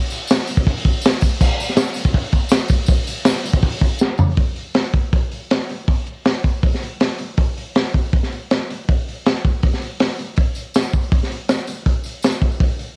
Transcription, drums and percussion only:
0.10 open hi-hat, tambourine
0.28 snare, open hi-hat, tambourine
0.47 open hi-hat, tambourine
0.57 kick
0.67 kick, open hi-hat
0.84 kick, open hi-hat, tambourine
1.02 open hi-hat, tambourine
1.06 snare
1.21 kick, open hi-hat, tambourine
1.41 kick, crash, tambourine
1.60 open hi-hat, tambourine
1.69 snare
1.76 snare, open hi-hat, tambourine
1.94 open hi-hat, tambourine
2.05 kick
2.14 kick, open hi-hat
2.32 kick, open hi-hat, tambourine
2.49 snare, open hi-hat, tambourine
2.68 kick, open hi-hat, tambourine
2.86 kick, open hi-hat, tambourine
3.07 open hi-hat, tambourine
3.24 snare, open hi-hat, tambourine
3.36 snare
3.44 open hi-hat, tambourine
3.53 kick
3.62 kick, open hi-hat
3.81 kick, open hi-hat, tambourine
3.99 snare, tambourine
4.18 floor tom, tambourine
4.37 kick, open hi-hat
4.56 open hi-hat
4.74 snare, open hi-hat
4.94 kick, open hi-hat
5.13 kick, open hi-hat
5.31 open hi-hat
5.50 snare, open hi-hat
5.69 open hi-hat
5.88 kick, open hi-hat
6.07 open hi-hat
6.25 snare, open hi-hat
6.44 kick, open hi-hat
6.63 kick, open hi-hat
6.74 snare
6.83 open hi-hat
7.00 snare, open hi-hat
7.18 open hi-hat
7.37 kick, open hi-hat
7.57 open hi-hat
7.75 snare, open hi-hat
7.94 kick, open hi-hat
8.13 kick, open hi-hat
8.23 snare
8.32 open hi-hat
8.50 snare, open hi-hat
8.70 open hi-hat
8.89 kick, open hi-hat
9.08 open hi-hat
9.26 snare, open hi-hat
9.45 kick, open hi-hat
9.63 kick, open hi-hat
9.73 snare
9.82 open hi-hat
10.00 snare, open hi-hat
10.18 open hi-hat
10.36 kick, open hi-hat
10.55 open hi-hat, tambourine
10.74 snare, open hi-hat, tambourine
10.82 tambourine
10.93 kick, open hi-hat, tambourine
11.04 tambourine
11.12 kick, open hi-hat
11.23 snare
11.31 open hi-hat, tambourine
11.49 snare, open hi-hat, tambourine
11.67 open hi-hat, tambourine
11.86 kick, open hi-hat
12.04 open hi-hat, tambourine
12.23 snare, open hi-hat, tambourine
12.32 tambourine
12.42 kick, open hi-hat
12.51 tambourine
12.60 kick, open hi-hat
12.79 open hi-hat, tambourine

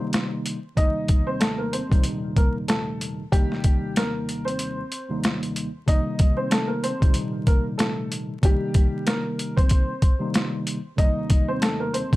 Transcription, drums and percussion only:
0.13 snare, closed hi-hat
0.46 closed hi-hat
0.77 kick, closed hi-hat
1.08 kick, closed hi-hat
1.41 snare, closed hi-hat
1.73 closed hi-hat
1.92 kick, closed hi-hat
2.04 closed hi-hat
2.36 kick, closed hi-hat
2.68 snare, closed hi-hat
3.01 closed hi-hat
3.33 kick, closed hi-hat
3.52 snare
3.64 kick, closed hi-hat
3.96 snare, closed hi-hat
4.29 closed hi-hat
4.48 closed hi-hat
4.59 closed hi-hat
4.92 closed hi-hat
5.24 snare, closed hi-hat
5.43 closed hi-hat
5.56 closed hi-hat
5.88 kick, closed hi-hat
6.19 kick, closed hi-hat
6.51 snare, closed hi-hat
6.84 closed hi-hat
7.02 kick, closed hi-hat
7.14 closed hi-hat
7.47 kick, closed hi-hat
7.79 snare, closed hi-hat
8.12 closed hi-hat
8.43 kick, closed hi-hat
8.74 kick, closed hi-hat
9.07 snare, closed hi-hat
9.39 closed hi-hat
9.57 kick, closed hi-hat
9.69 kick, closed hi-hat
10.02 kick, closed hi-hat
10.34 snare, closed hi-hat
10.67 closed hi-hat
10.98 kick, closed hi-hat
11.30 kick, closed hi-hat
11.62 snare, closed hi-hat
11.94 closed hi-hat
12.13 kick, closed hi-hat

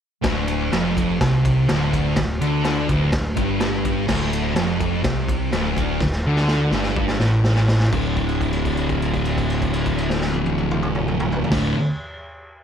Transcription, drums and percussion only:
0.24 kick, snare, ride
0.48 ride
0.73 snare, ride
0.97 kick, ride
1.21 kick, snare, ride
1.45 kick, ride
1.69 snare, ride
1.93 kick, ride
2.16 kick, snare, ride
2.41 ride
2.65 snare, ride
2.89 kick, ride
3.12 kick, snare, ride
3.37 kick, ride
3.60 snare, ride
3.85 kick, ride
4.08 kick, snare, crash
4.33 ride
4.56 snare, ride
4.80 kick, ride
5.04 kick, snare, ride
5.29 kick, ride
5.52 snare, ride
5.77 kick, ride
6.00 kick, snare
6.12 snare
6.36 snare
6.48 snare
6.71 snare
6.83 snare
6.96 kick
7.08 snare
7.20 snare
7.44 snare
7.55 snare
7.68 snare
7.80 snare
7.92 kick, crash
8.16 kick, crash
8.29 crash
8.41 kick, crash
8.53 crash
8.65 kick, crash
8.77 crash
8.89 kick, crash
9.02 crash
9.14 kick, crash
9.25 crash
9.38 kick, crash
9.50 crash
9.62 kick, crash
9.73 crash
9.86 kick, crash
9.98 crash
10.10 snare
10.21 snare
10.34 high tom
10.46 high tom
10.58 high tom
10.71 mid tom
10.83 mid tom
10.95 mid tom
11.08 mid tom
11.20 mid tom
11.32 floor tom
11.44 floor tom
11.51 kick, snare, crash

